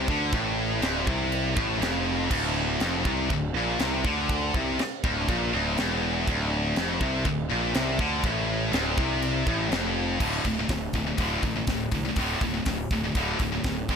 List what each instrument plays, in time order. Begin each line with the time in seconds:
0.08 picked electric bass D2, distorted electric guitar D3, kick
0.32 picked electric bass A1, distorted electric guitar A2, kick, china
0.82 picked electric bass D1, distorted electric guitar D2, snare, china
1.07 picked electric bass C2, distorted electric guitar C3, kick
1.32 china
1.57 picked electric bass A1, distorted electric guitar A2, kick
1.80 picked electric bass F1, distorted electric guitar F2, snare, china
2.30 picked electric bass D1, distorted electric guitar D2, kick, china, crash
2.80 picked electric bass F1, distorted electric guitar F2, snare, china
3.04 picked electric bass C2, distorted electric guitar C3, kick
3.30 picked electric bass D1, distorted electric guitar D2, kick, china
3.54 picked electric bass A#1, distorted electric guitar A#2
3.79 picked electric bass C2, distorted electric guitar C3, snare, china
4.04 picked electric bass D2, distorted electric guitar D3, kick
4.29 kick, china
4.54 picked electric bass C2, distorted electric guitar C3, kick
4.79 muted picked electric bass stroke, muted distorted electric guitar stroke, snare, china
5.04 picked electric bass D1, distorted electric guitar D2, kick
5.29 picked electric bass A#1, distorted electric guitar A#2, kick, china
5.53 picked electric bass D1, distorted electric guitar D2
5.78 picked electric bass E1, distorted electric guitar E2, snare, china
6.27 picked electric bass D1, distorted electric guitar D2, kick, china
6.76 picked electric bass F1, distorted electric guitar F2, snare, china
7.00 picked electric bass C2, distorted electric guitar C3, kick
7.25 picked electric bass D1, distorted electric guitar D2, kick, china
7.50 picked electric bass A#1, distorted electric guitar A#2
7.74 picked electric bass C2, distorted electric guitar C3, snare, china
7.98 picked electric bass D2, distorted electric guitar D3, kick
8.23 picked electric bass A1, distorted electric guitar A2, kick, china
8.72 picked electric bass D1, distorted electric guitar D2, snare, china
8.98 picked electric bass C2, distorted electric guitar C3, kick
9.22 china
9.46 picked electric bass A1, distorted electric guitar A2, kick
9.72 picked electric bass F1, distorted electric guitar F2, snare, china
10.20 picked electric bass D1, distorted electric guitar D2 A2 D3, kick, crash
10.45 picked electric bass D1, distorted electric guitar D2 A2, kick, open hi-hat
10.59 distorted electric guitar D2 A2
10.69 picked electric bass D1, distorted electric guitar D2 A2, kick, snare, open hi-hat
10.93 picked electric bass D1, distorted electric guitar D2 A2, kick, open hi-hat
11.07 distorted electric guitar D2 A2
11.18 picked electric bass D1, distorted electric guitar D2 A2 D3, kick, open hi-hat
11.42 picked electric bass A1, distorted electric guitar D2 A2, kick, open hi-hat
11.56 distorted electric guitar D2 A2
11.67 picked electric bass D1, distorted electric guitar D2 A2, kick, snare, open hi-hat
11.91 picked electric bass C2, distorted electric guitar D2 A2, kick, open hi-hat
12.05 distorted electric guitar D2 A2
12.16 picked electric bass D1, distorted electric guitar D2 A2 D3, kick, open hi-hat
12.41 picked electric bass D1, distorted electric guitar D2 A2, kick, open hi-hat
12.54 distorted electric guitar D2 A2
12.66 picked electric bass D1, distorted electric guitar D2 A2, kick, snare, open hi-hat
12.91 picked electric bass D1, distorted electric guitar D2 A2, kick, open hi-hat
13.04 distorted electric guitar D2 A2
13.15 picked electric bass D1, distorted electric guitar D2 A2 D3, kick, open hi-hat
13.39 picked electric bass D1, distorted electric guitar D2 A2, kick, open hi-hat
13.52 distorted electric guitar D2 A2
13.64 picked electric bass D1, distorted electric guitar D2 A2, kick, snare, open hi-hat
13.88 picked electric bass G1, distorted electric guitar G2 D3 G3, kick, open hi-hat